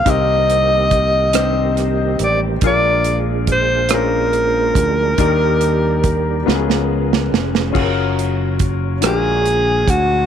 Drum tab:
CC |------------|------------|------------|x-----------|
HH |x-x-x-x-x-x-|x-x-x-x-x-x-|x-x-x-------|--x-x-x-x-x-|
SD |------r-r---|------r-----|------oo-ooo|------r-----|
BD |o---o-------|o---o-----o-|o---o-------|o---o-----o-|